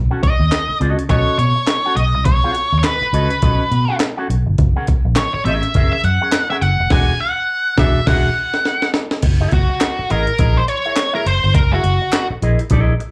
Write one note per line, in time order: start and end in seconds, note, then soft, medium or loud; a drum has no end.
0.11 0.21 C#4 medium
0.11 0.21 F#4 medium
0.11 0.22 A4 medium
0.11 0.23 F#5 medium
0.23 0.77 D#5 loud
0.23 muted clean electric guitar stroke soft
0.23 kick medium
0.23 closed hi-hat medium
0.39 0.49 D#2 loud
0.39 muted clean electric guitar stroke soft
0.52 snare loud
0.52 clap medium
0.52 closed hi-hat medium
0.68 muted clean electric guitar stroke soft
0.68 muted fingered electric bass stroke soft
0.80 0.94 C#2 medium
0.80 1.02 C#4 medium
0.80 0.98 F#4 medium
0.80 0.98 A4 medium
0.80 0.97 D#5 medium
0.80 closed hi-hat medium
0.98 muted clean electric guitar stroke soft
0.98 closed hi-hat soft
1.09 1.23 B1 loud
1.09 1.37 C#4 medium
1.09 1.37 F#4 medium
1.09 1.37 A4 loud
1.09 1.37 C#5 medium
1.09 1.37 D#5 medium
1.09 kick medium
1.09 closed hi-hat medium
1.38 1.52 B2 loud
1.38 1.96 C#5 loud
1.38 muted clean electric guitar stroke soft
1.38 closed hi-hat medium
1.56 muted clean electric guitar stroke soft
1.67 muted clean electric guitar stroke soft
1.67 snare loud
1.67 clap medium
1.67 closed hi-hat medium
1.85 1.96 C#4 medium
1.85 1.96 F#4 medium
1.85 1.96 A4 medium
1.85 1.97 F#5 medium
1.96 2.14 B1 loud
1.96 2.24 D#5 loud
1.96 muted clean electric guitar stroke soft
1.96 closed hi-hat medium
2.14 2.26 C2 medium
2.14 muted clean electric guitar stroke soft
2.25 2.39 B1 loud
2.25 2.78 C#5 medium
2.25 muted clean electric guitar stroke soft
2.25 kick loud
2.25 closed hi-hat loud
2.44 2.54 C#4 medium
2.44 2.55 F#4 medium
2.44 2.55 A4 medium
2.44 2.57 F#5 medium
2.55 muted clean electric guitar stroke soft
2.55 closed hi-hat medium
2.72 2.81 D#2 medium
2.72 muted clean electric guitar stroke soft
2.79 2.84 C#5 medium
2.84 3.96 B4 medium
2.84 snare loud
2.84 clap medium
2.84 closed hi-hat medium
3.02 muted fingered electric bass stroke soft
3.02 muted clean electric guitar stroke medium
3.13 3.26 C#2 loud
3.13 3.34 C#4 medium
3.13 3.31 F#4 medium
3.13 3.30 A4 medium
3.13 3.30 D#5 medium
3.13 closed hi-hat medium
3.30 muted clean electric guitar stroke soft
3.30 closed hi-hat medium
3.42 3.56 B1 loud
3.42 3.63 C#4 medium
3.42 3.64 F#4 medium
3.42 3.64 A4 medium
3.42 3.64 D#5 medium
3.42 kick medium
3.42 closed hi-hat medium
3.71 3.85 B2 loud
3.71 muted clean electric guitar stroke soft
3.71 closed hi-hat medium
3.88 3.99 C#4 soft
3.88 3.99 F#4 soft
3.88 4.00 A4 medium
3.88 4.00 F#5 medium
4.00 muted clean electric guitar stroke soft
4.00 snare loud
4.00 clap loud
4.00 closed hi-hat loud
4.17 4.27 C#4 medium
4.17 4.28 F#4 medium
4.17 4.28 A4 medium
4.17 4.29 F#5 medium
4.29 4.43 B1 medium
4.29 muted clean electric guitar stroke soft
4.29 closed hi-hat medium
4.46 4.56 G1 medium
4.46 muted clean electric guitar stroke soft
4.58 4.72 F#1 loud
4.58 muted clean electric guitar stroke medium
4.58 kick loud
4.58 closed hi-hat medium
4.76 4.86 C#4 medium
4.76 4.87 G#4 medium
4.76 4.86 A#4 medium
4.76 4.88 F#5 medium
4.87 muted clean electric guitar stroke soft
4.87 kick medium
4.87 closed hi-hat medium
5.05 5.14 A#1 medium
5.05 muted clean electric guitar stroke soft
5.16 5.33 C#5 medium
5.16 snare loud
5.16 clap medium
5.16 clap loud
5.16 closed hi-hat medium
5.34 5.45 C#5 medium
5.34 muted fingered electric bass stroke soft
5.34 muted clean electric guitar stroke soft
5.45 5.59 A1 loud
5.45 5.67 C#4 loud
5.45 5.63 G#4 medium
5.45 5.63 A#4 medium
5.45 5.91 E5 medium
5.45 5.62 E5 loud
5.45 closed hi-hat medium
5.63 muted clean electric guitar stroke soft
5.63 closed hi-hat medium
5.74 5.88 F#1 medium
5.74 5.96 C#4 medium
5.74 5.96 G#4 medium
5.74 5.96 A#4 loud
5.74 5.96 E5 medium
5.74 kick medium
5.74 closed hi-hat medium
5.93 6.03 E5 medium
6.04 6.17 F#2 medium
6.04 6.47 F#5 loud
6.04 muted clean electric guitar stroke soft
6.04 closed hi-hat medium
6.21 6.32 C#4 medium
6.21 6.32 G#4 medium
6.21 6.32 A#4 medium
6.21 6.33 F#5 medium
6.32 muted clean electric guitar stroke soft
6.32 snare loud
6.32 clap loud
6.32 clap medium
6.32 closed hi-hat medium
6.50 6.62 C#4 medium
6.50 6.62 G#4 medium
6.50 6.62 A#4 medium
6.50 6.55 E5 medium
6.50 6.63 F#5 medium
6.61 6.75 F#1 medium
6.61 6.91 F#5 loud
6.61 muted clean electric guitar stroke soft
6.61 closed hi-hat medium
6.80 6.89 F1 medium
6.80 muted clean electric guitar stroke soft
6.90 7.12 E1 loud
6.90 7.13 D4 loud
6.90 7.13 F#4 loud
6.90 7.12 G#4 loud
6.90 7.12 F#5 loud
6.90 7.18 G#5 loud
6.90 kick loud
6.90 snare loud
6.90 crash medium
7.20 7.79 F#5 loud
7.78 7.99 E1 loud
7.78 7.99 D4 medium
7.78 7.99 F#4 loud
7.78 7.99 G#4 medium
7.78 8.07 E5 medium
7.78 8.00 E5 loud
7.78 kick loud
7.78 snare loud
8.07 8.28 E1 loud
8.07 8.28 D4 medium
8.07 8.29 F#4 loud
8.07 8.29 G#4 loud
8.07 8.29 E5 loud
8.07 8.90 F#5 medium
8.07 kick loud
8.07 snare loud
8.07 crash medium
8.54 snare medium
8.65 snare medium
8.82 snare medium
8.94 snare loud
9.11 snare loud
9.22 9.45 F#1 loud
9.22 muted clean electric guitar stroke soft
9.22 kick medium
9.22 closed hi-hat medium
9.22 crash loud
9.40 9.51 E4 medium
9.40 9.51 G#4 medium
9.40 9.51 A#4 medium
9.40 9.52 E5 medium
9.52 9.66 F#1 medium
9.52 10.11 F#4 medium
9.52 muted clean electric guitar stroke soft
9.52 kick medium
9.52 closed hi-hat medium
9.69 muted clean electric guitar stroke soft
9.81 snare loud
9.81 clap medium
9.81 closed hi-hat medium
9.98 muted clean electric guitar stroke soft
9.98 muted fingered electric bass stroke soft
10.10 10.24 A1 medium
10.10 10.31 E4 medium
10.10 10.27 G#4 medium
10.10 10.27 A#4 medium
10.10 10.58 A#4 medium
10.10 10.26 D#5 medium
10.10 closed hi-hat medium
10.27 muted clean electric guitar stroke soft
10.27 closed hi-hat medium
10.38 10.61 A#1 medium
10.38 10.60 E4 medium
10.38 10.60 G#4 medium
10.38 10.60 A#4 medium
10.38 10.60 D#5 medium
10.38 kick medium
10.38 closed hi-hat medium
10.57 10.62 C5 medium
10.68 11.14 C#5 loud
10.68 muted clean electric guitar stroke soft
10.68 closed hi-hat medium
10.85 10.96 E4 medium
10.85 10.96 G#4 medium
10.85 10.97 A#4 medium
10.85 10.97 E5 medium
10.96 muted clean electric guitar stroke soft
10.96 snare loud
10.96 clap loud
10.96 clap medium
10.96 closed hi-hat loud
11.13 11.25 E4 medium
11.13 11.25 G#4 medium
11.13 11.26 A#4 medium
11.13 11.27 A#4 medium
11.13 11.27 E5 medium
11.26 11.39 F#1 medium
11.26 11.55 C5 medium
11.26 muted clean electric guitar stroke soft
11.26 closed hi-hat medium
11.44 11.55 G1 medium
11.44 muted clean electric guitar stroke soft
11.55 11.77 F#1 loud
11.55 11.73 A#4 medium
11.55 muted clean electric guitar stroke soft
11.55 kick loud
11.55 closed hi-hat medium
11.72 11.83 E4 medium
11.72 12.26 F#4 medium
11.72 11.83 G#4 medium
11.72 11.84 A#4 medium
11.72 11.85 E5 medium
11.84 11.97 F#1 medium
11.84 muted clean electric guitar stroke soft
11.84 closed hi-hat medium
12.02 muted clean electric guitar stroke soft
12.12 snare loud
12.12 clap loud
12.12 clap medium
12.12 closed hi-hat medium
12.30 muted fingered electric bass stroke medium
12.30 muted clean electric guitar stroke soft
12.42 12.55 A#1 loud
12.42 12.63 E4 medium
12.42 12.60 G#4 medium
12.42 12.60 A#4 medium
12.42 12.59 D#5 medium
12.42 closed hi-hat medium
12.59 muted clean electric guitar stroke soft
12.59 closed hi-hat soft
12.70 12.93 A#1 loud
12.70 12.93 E4 loud
12.70 12.93 G#4 medium
12.70 12.93 A#4 medium
12.70 12.94 D#5 loud
12.70 kick medium
12.70 closed hi-hat medium
13.00 muted clean electric guitar stroke soft
13.00 closed hi-hat medium